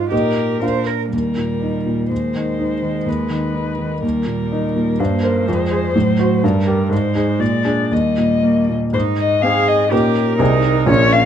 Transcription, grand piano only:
0.00 0.14 G#2 soft
0.00 0.11 D#4 soft
0.00 0.15 F4 soft
0.00 0.14 C5 soft
0.11 0.59 A#2 soft
0.11 0.58 D#4 soft
0.11 0.58 G4 soft
0.11 0.59 D#5 soft
0.61 1.10 A#2 soft
0.61 1.08 D4 soft
0.61 1.08 F4 soft
0.61 1.09 F5 soft
1.13 2.08 D#2 soft
1.37 1.77 A#2 soft
1.62 2.01 D#4 soft
1.86 2.10 A#2 soft
2.11 3.04 D#2 soft
2.35 2.74 D#3 soft
2.59 2.98 D#4 soft
2.82 3.07 D#3 soft
3.06 4.00 D#2 soft
3.30 3.69 D#3 soft
3.55 3.93 D#4 soft
3.78 4.03 D#3 soft
4.02 4.96 D#2 soft
4.26 4.65 A#2 soft
4.52 4.90 D#4 soft
4.76 5.00 A#2 soft
5.00 5.46 G2 soft
5.23 5.45 A#4 soft
5.23 5.45 C5 soft
5.48 5.94 F2 soft
5.71 5.93 G#4 soft
5.71 5.93 C5 soft
5.95 6.42 A2 soft
6.19 6.41 F#4 soft
6.19 6.41 C5 soft
6.44 6.90 G2 soft
6.67 6.89 G4 soft
6.67 6.89 A#4 soft
6.89 7.38 G#2 soft
7.15 7.38 D#4 soft
7.15 7.38 G#4 soft
7.40 7.89 A#2 soft
7.65 7.88 D4 soft
7.65 7.88 G#4 soft
7.92 8.91 D#2 soft
8.18 8.59 A#2 soft
8.43 8.84 A#3 soft
8.69 8.94 A#2 soft
8.93 9.41 G#2 soft
9.43 9.88 C4 soft
9.43 9.88 D#4 soft
9.43 9.89 G#4 soft
9.91 10.38 A#2 soft
9.91 10.35 C#4 soft
9.91 10.36 D#4 soft
9.91 10.36 G4 soft
10.39 10.86 C2 medium
10.39 10.84 C4 soft
10.39 10.84 D#4 soft
10.39 10.84 G#4 soft
10.86 11.25 A#1 medium
10.86 11.25 C#4 soft
10.86 11.25 F4 soft
10.86 11.25 A#4 soft

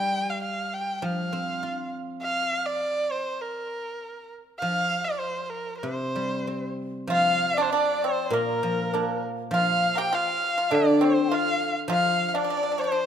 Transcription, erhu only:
0.00 0.31 G5 medium
0.30 0.42 F5 medium
0.42 0.75 F5 medium
0.74 0.98 G5 medium
0.98 1.06 G5 soft
1.05 1.94 F5 medium
2.22 2.68 F5 medium
2.66 3.13 D5 medium
3.11 3.43 C5 medium
3.41 4.33 A#4 medium
4.59 5.06 F5 medium
5.05 5.21 D5 medium
5.20 5.46 C5 medium
5.46 5.78 A#4 medium
5.46 5.51 C5 soft
5.78 6.71 C5 medium
7.12 7.59 F5 medium
7.57 7.64 D5 medium
7.63 7.72 C5 medium
7.71 8.03 D5 medium
8.02 8.35 C5 medium
8.34 9.24 A#4 medium
9.54 9.99 F5 loud
9.98 10.16 G5 medium
10.15 10.76 F5 medium
10.75 11.06 D5 medium
11.04 11.36 C5 medium
11.34 11.77 F5 loud
11.93 12.28 F5 loud
12.28 12.38 F5 medium
12.36 12.82 D5 loud
12.80 13.06 C5 medium

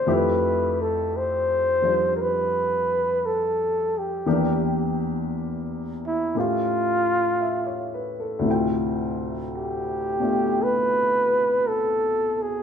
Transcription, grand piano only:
0.07 4.26 F2 medium
0.07 1.81 F3 soft
0.07 4.26 A3 soft
0.07 4.26 E4 soft
0.07 4.26 G4 medium
1.82 4.25 F3 soft
1.82 4.26 G3 soft
1.82 4.25 D4 soft
1.82 4.27 F4 soft
4.26 6.36 E2 soft
4.26 6.36 E3 soft
4.26 6.36 A#3 soft
4.26 6.36 D4 soft
4.26 6.36 G4 medium
6.35 8.40 A2 soft
6.35 8.46 A3 soft
6.35 8.47 C#4 soft
6.35 8.47 F4 soft
6.35 8.47 G4 soft
7.41 7.91 E5 soft
7.66 8.13 C#5 soft
7.94 8.26 B4 soft
8.20 8.57 A4 soft
8.39 12.63 D2 soft
8.39 12.63 A2 soft
8.44 12.63 C3 soft
8.44 12.63 E4 soft
8.48 10.19 F4 soft
8.48 12.63 G5 soft
10.19 12.63 B2 soft
10.19 12.63 A3 soft
10.19 12.63 D4 soft
10.19 12.63 F4 soft

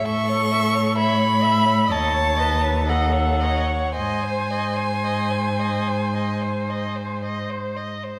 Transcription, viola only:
0.05 0.98 A4 medium
0.96 1.44 C#5 medium
1.43 1.92 E5 medium
1.91 2.40 C#5 medium
2.39 2.91 B4 medium
2.89 3.44 A4 medium
3.43 3.97 C#5 medium
3.97 7.72 C5 medium

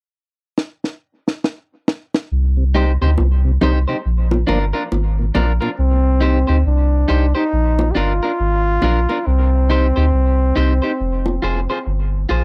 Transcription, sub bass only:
2.32 2.97 C2 loud
3.02 3.17 D2 medium
3.19 3.58 C2 loud
3.62 3.86 C2 medium
4.06 4.45 A#1 medium
4.49 4.73 G1 medium
4.92 5.31 G#1 medium
5.35 5.59 A#1 medium
5.79 6.45 C2 loud
6.49 6.64 D2 medium
6.66 7.05 C2 loud
7.10 7.34 C2 medium
7.53 7.92 A#1 medium
7.96 8.20 G1 medium
8.40 8.79 G#1 medium
8.83 9.07 A#1 medium
9.27 9.92 C2 loud
9.97 10.12 D2 medium
10.13 10.52 C2 medium
10.57 10.81 C2 medium
11.00 11.39 F1 medium
11.43 11.67 F1 medium
11.87 12.26 G1 medium
12.30 12.44 A#1 medium

